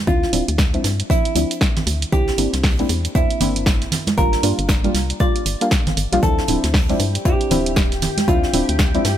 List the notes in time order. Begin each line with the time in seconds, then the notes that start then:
0.07 D2 F3 C4 D4 E4 F4, kick, closed hi-hat, low conga
0.23 snare
0.33 D1 F3 C4 D4 E4, closed hi-hat, open hi-hat
0.48 D2, closed hi-hat
0.58 kick, snare, closed hi-hat
0.74 F3 C4 D4 E4, closed hi-hat, high conga
0.84 G2, snare, closed hi-hat, open hi-hat
1.00 closed hi-hat
1.10 F3 C4 D4 E4, kick, closed hi-hat
1.25 closed hi-hat
1.35 D2 F3 C4 D4 E4, closed hi-hat, open hi-hat
1.51 closed hi-hat
1.61 kick, snare, closed hi-hat
1.76 snare, closed hi-hat, low conga
1.87 D2, closed hi-hat, open hi-hat
2.02 closed hi-hat
2.12 C2 A#3 C4 D4 E4 G4, kick, closed hi-hat, low conga
2.28 snare
2.38 G1 A#3 C4 D4 E4, closed hi-hat, open hi-hat
2.53 C2, snare, closed hi-hat
2.63 kick, snare, open hi-hat
2.79 A#3 C4 D4 E4, closed hi-hat, high conga
2.89 E2, closed hi-hat, open hi-hat
3.05 closed hi-hat
3.15 E2 A#3 C4 D4 E4, kick, closed hi-hat
3.30 closed hi-hat
3.40 G1 A#3 C4 D4 E4, closed hi-hat, open hi-hat, low conga
3.56 closed hi-hat
3.66 kick, snare, closed hi-hat
3.81 snare, closed hi-hat
3.92 snare, closed hi-hat, open hi-hat, low conga
4.07 snare, closed hi-hat, high conga
4.17 G1 G3 A#3 D4 F4 A#4, kick, closed hi-hat, low conga
4.33 snare, closed hi-hat
4.43 G2 G3 A#3 D4 F4, closed hi-hat, open hi-hat
4.59 G1, closed hi-hat
4.69 kick, snare, closed hi-hat
4.84 G3 A#3 D4 F4, closed hi-hat, high conga
4.95 C2, snare, closed hi-hat, open hi-hat
5.10 closed hi-hat
5.20 G3 A#3 D4 F4 D5, kick, closed hi-hat
5.36 closed hi-hat
5.46 G1, closed hi-hat, open hi-hat
5.61 G3 A#3 D4 F4, closed hi-hat
5.71 kick, snare, closed hi-hat
5.87 G1, snare, closed hi-hat, low conga
5.97 G1, closed hi-hat, open hi-hat
6.12 A#1 G3 A#3 D4 F4, closed hi-hat
6.22 D2 F3 C4 E4 G4 A4 G5, kick, closed hi-hat, low conga
6.38 snare
6.48 D1 F3 C4 D4 E4, closed hi-hat, open hi-hat
6.64 D2, snare, closed hi-hat
6.74 kick, snare, open hi-hat
6.89 F3 C4 D4 E4, closed hi-hat, high conga
7.00 G2, closed hi-hat, open hi-hat
7.15 closed hi-hat
7.25 F2 F3 C4 D4 E4 G4, kick, closed hi-hat
7.41 closed hi-hat
7.50 D1 F3 C4 D4 E4, closed hi-hat, open hi-hat, low conga
7.66 closed hi-hat
7.76 kick, snare, closed hi-hat
7.92 snare, closed hi-hat
8.02 snare, closed hi-hat, open hi-hat, low conga
8.17 snare, closed hi-hat, high conga
8.28 D2 F3 C4 D4 E4 F4, kick, closed hi-hat, low conga
8.43 snare
8.53 D1 F3 C4 D4 E4, closed hi-hat, open hi-hat
8.69 D2, closed hi-hat
8.79 kick, snare, closed hi-hat
8.94 F3 C4 D4 E4, closed hi-hat, high conga
9.05 G2, snare, closed hi-hat, open hi-hat